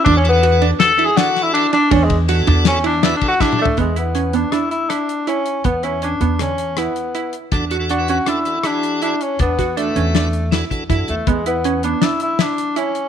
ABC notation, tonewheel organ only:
X:1
M:5/4
L:1/16
Q:1/4=160
K:Emix
V:1 name="Tonewheel organ"
[E,DFA] z [E,DFA] [E,DFA] z [E,DFA]2 z [E,DFB] z [E,DFA] z [E,DFA]4- [E,DFA] z3 | z4 [E,DFA]4- [E,DFA] z3 [E,DFB] z [E,DFA] z [E,DFG]3 z | z16 z4 | z16 z4 |
[E,DFA] z [E,DFA] [E,DFA] z [E,DFB]2 z [E,DFA] z [E,DFA] z [E,DFG]4- [E,DFG] z3 | z4 [E,DFB]4- [E,DFB] z3 [E,DFA] z [E,DFA] z [E,DFA]3 z | z16 z4 |]